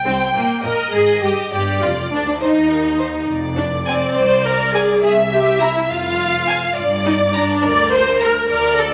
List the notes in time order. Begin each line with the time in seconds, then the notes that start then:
Already playing: G5
0.04 C2 C4
0.34 A#1 A#2 A#3
0.63 A#1 A#2 A#4 D#5
0.92 G#1 G#2 G#4
1.21 G1 G2 G4
1.51 G1 G2 G4 D5
1.80 F1 F2 F4
2.10 D2 D4
2.24 D2 D4
2.40 D#2 D#4 C5
2.69 A#4
2.98 C5
3.28 F1 F2 D5
3.57 D4
3.86 C4 G#5
4.15 C2 C5
4.45 A#4
4.73 G#4 G#5
5.02 C2 G#4 E5
5.31 G4
5.60 E4 A#5
5.75 E4
5.89 F1 F2 F4 F5
6.48 G#5
6.74 G1 G2 D5
7.05 D#4
7.33 D4 A#5
7.61 D2 A#4 D5
7.92 C5
8.20 A#4 A#5
8.47 D2 A#4 D5
8.78 A4